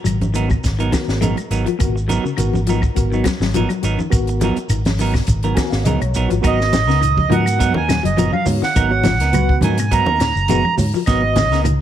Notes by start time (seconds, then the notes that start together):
0.04 G#1 F#3, closed hi-hat, claves, shekere
0.21 muted clean electric guitar stroke, closed hi-hat, high conga, shekere
0.34 D#3 F#3 B3 D#4 A#4, closed hi-hat, shekere
0.49 B2, muted clean electric guitar stroke, kick, claves, shekere
0.64 G#1, muted clean electric guitar stroke, kick, snare, closed hi-hat, shekere
0.79 D#3 F#3 B3 D#4 A#4, closed hi-hat, shekere
0.92 D#3 B3 F#4 A#4, muted clean electric guitar stroke, kick, snare, closed hi-hat, high conga, claves, shekere
1.08 G#1, snare, shekere
1.21 F#3 G#3 B3 D#4 A#4, closed hi-hat, high conga, shekere
1.37 muted clean electric guitar stroke, closed hi-hat, claves, shekere
1.50 G#1 F#3 B3 D#4 A#4, closed hi-hat, shekere
1.64 F3 F#4 A#4, muted clean electric guitar stroke, closed hi-hat, shekere
1.78 G#1 B2 B3 F#4 A#4, kick, closed hi-hat, claves, shekere
1.96 muted clean electric guitar stroke, shekere
2.08 F#3 B3 D#4 A#4, muted clean electric guitar stroke, closed hi-hat, high conga, shekere
2.23 C#3 F#4 A#4, muted fingered electric bass stroke, muted clean electric guitar stroke, shekere
2.37 G#1 D#3 B3 F#4 A#4, closed hi-hat, claves, shekere
2.53 muted clean electric guitar stroke, high conga, shekere
2.67 F3 F#3 B3 D#4 A#4, closed hi-hat, shekere
2.82 muted clean electric guitar stroke, kick, claves, shekere
2.95 G#1 B3 F#4 A#4, muted clean electric guitar stroke, kick, closed hi-hat, shekere
3.12 D#3 F#3 B3 D#4, shekere
3.24 F#3, muted clean electric guitar stroke, kick, snare, closed hi-hat, high conga, claves, shekere
3.40 G#1 F#3, snare, shekere
3.54 F3 F#3 B3 D#4 A#4, closed hi-hat, high conga, shekere
3.69 F#3, muted clean electric guitar stroke, closed hi-hat, claves, shekere
3.82 G#1 F#3 B3 D#4 F#4 A#4, closed hi-hat, shekere
3.99 D#3, muted clean electric guitar stroke, high conga, shekere
4.10 G#1 B3 F#4 A#4, kick, closed hi-hat, claves, shekere
4.27 muted clean electric guitar stroke, closed hi-hat, shekere
4.41 F3 F#3 B3 D#4 A#4, closed hi-hat, high conga, shekere
4.56 muted fingered electric bass stroke, muted clean electric guitar stroke, closed hi-hat, shekere
4.69 G#1 D#3, closed hi-hat, claves, shekere
4.85 muted clean electric guitar stroke, snare, closed hi-hat, high conga, shekere
4.98 D#3 F#3 B3 D#4 A#4, open hi-hat, shekere
5.14 B2, muted clean electric guitar stroke, kick, snare, claves, shekere
5.27 G#1, muted clean electric guitar stroke, kick, closed hi-hat, shekere
5.43 D#3 F#3 B3 A#4, muted clean electric guitar stroke, closed hi-hat, shekere
5.54 D#3 B3 F#4 A#4 G#5, muted clean electric guitar stroke, kick, snare, closed hi-hat, high conga, claves, shekere
5.70 G#1 F5, snare, shekere
5.84 C#2 F#3 G#3 B3 D#4 A#4 D#5, closed hi-hat, high conga, shekere
6.00 B1 C#5, muted clean electric guitar stroke, closed hi-hat, claves, shekere
6.14 A#1 F#3 B3 D#4 A#4, closed hi-hat, shekere
6.28 G#1 F3 F#4 B4, muted clean electric guitar stroke, closed hi-hat, shekere
6.41 G#1 F#3 B3 D#4 F#4 A#4, muted clean electric guitar stroke, kick, closed hi-hat, claves, shekere
6.47 D#5
6.60 muted clean electric guitar stroke, snare
6.73 D#3, muted clean electric guitar stroke, snare, closed hi-hat, high conga, shekere
6.87 C#2 C#3 B3 D#4 A#4, snare, shekere
7.01 D#3, muted clean electric guitar stroke, closed hi-hat, claves, shekere
7.17 kick, high conga
7.29 G#2 F3 F#3 B3 D#4 F#4 A#4 F#5, closed hi-hat, high conga, low conga, shekere
7.46 muted clean electric guitar stroke, closed hi-hat, claves, shekere
7.59 F#3 B3 D#4 A#4, kick, closed hi-hat, shekere
7.74 D#2 D#3 B3 D#4 A#4 G#5, high conga
7.89 F#3, muted clean electric guitar stroke, snare, closed hi-hat, claves, shekere
8.03 F#1 F#3 D#5, closed hi-hat, shekere
8.17 F3 F#3 B3 D#4 A#4, closed hi-hat, high conga, shekere
8.33 F#3 F5, muted clean electric guitar stroke, high conga, claves
8.45 G#2 B3 F#4 C#5, muted clean electric guitar stroke, open hi-hat, low conga, shekere
8.61 D#3 F#5, muted fingered electric bass stroke, muted clean electric guitar stroke, snare, shekere
8.75 G#1 F#3 B3 D#4 A#4, kick, closed hi-hat, claves, shekere
8.90 B3 F#4 C#5, muted clean electric guitar stroke
9.03 F3, muted clean electric guitar stroke, snare, closed hi-hat, high conga, low conga, shekere
9.20 C#2 B3 D#4 A#4, snare, closed hi-hat, shekere
9.33 F#3 B3 F#4 B4, muted clean electric guitar stroke, closed hi-hat, low conga, claves, shekere
9.49 kick
9.61 G#2 D#3 F#3 B3 D#4 A#4 G#5, closed hi-hat, high conga, low conga, shekere
9.78 B2, muted clean electric guitar stroke, closed hi-hat, claves, shekere
9.91 F#3 B3 D#4 A#4 A#5, kick, closed hi-hat, shekere
10.06 D#2 B3 D#4 A#4, high conga
10.20 D#3, muted clean electric guitar stroke, snare, closed hi-hat, claves, shekere
10.35 F#1, shekere
10.48 F#3 G#3 B3 D#4 F#4 A#4 B4, closed hi-hat, high conga, shekere
10.64 muted clean electric guitar stroke, high conga, claves
10.77 G#2 F#4 C#5, muted clean electric guitar stroke, open hi-hat, low conga, shekere
10.93 F3 F#4 A#4, muted fingered electric bass stroke, muted clean electric guitar stroke, shekere
11.06 G#1 B2 F#3 B3 D#4 F#4 A#4 B4 D#5, kick, snare, closed hi-hat, claves, shekere
11.24 muted clean electric guitar stroke
11.36 D#3, muted clean electric guitar stroke, snare, closed hi-hat, high conga, low conga, shekere
11.51 C#2 C#3 B3 D#4 A#4, snare, shekere
11.64 D#3, muted clean electric guitar stroke, closed hi-hat, low conga, claves, shekere